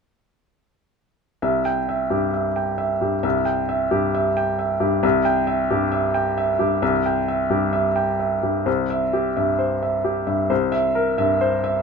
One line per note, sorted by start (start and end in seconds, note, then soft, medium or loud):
1.42 2.31 C2 medium
1.42 1.79 E5 medium
1.65 2.02 G5 medium
1.89 2.25 E5 medium
2.10 2.47 G2 soft
2.10 2.47 G4 soft
2.34 2.70 E5 soft
2.56 2.92 G5 soft
2.78 3.14 E5 soft
3.01 3.37 G2 soft
3.01 3.37 G4 soft
3.23 4.11 C2 medium
3.23 3.59 E5 medium
3.45 3.82 G5 soft
3.69 4.05 E5 medium
3.91 4.27 G2 soft
3.91 4.27 G4 medium
4.15 4.50 E5 medium
4.37 4.72 G5 medium
4.59 4.94 E5 medium
4.80 5.03 G2 soft
4.80 5.03 G4 soft
5.03 5.89 C2 medium
5.03 5.39 E5 medium
5.25 5.61 G5 medium
5.47 5.83 E5 medium
5.71 6.06 G2 medium
5.71 6.06 G4 medium
5.92 6.27 E5 medium
6.14 6.50 G5 medium
6.38 6.73 E5 medium
6.59 6.95 G2 soft
6.59 6.95 G4 soft
6.82 7.70 C2 medium
6.82 7.18 E5 medium
7.06 7.41 G5 medium
7.28 7.64 E5 medium
7.50 7.86 G2 soft
7.50 7.86 G4 medium
7.73 8.09 E5 medium
7.96 8.33 G5 soft
8.19 8.57 E5 soft
8.43 8.67 G2 soft
8.43 8.67 G4 soft
8.66 9.56 C2 medium
8.66 9.03 C5 soft
8.90 9.27 E5 medium
9.13 9.50 G4 soft
9.37 9.73 G2 soft
9.37 9.73 E5 soft
9.59 9.95 C5 medium
9.83 10.19 E5 soft
10.05 10.41 G4 soft
10.27 10.50 G2 soft
10.27 10.50 E5 soft
10.50 11.38 C2 medium
10.50 10.86 C5 medium
10.72 11.09 E5 medium
10.95 11.32 A#4 medium
11.18 11.55 G2 medium
11.18 11.54 E5 medium
11.41 11.77 C5 medium
11.64 11.82 E5 medium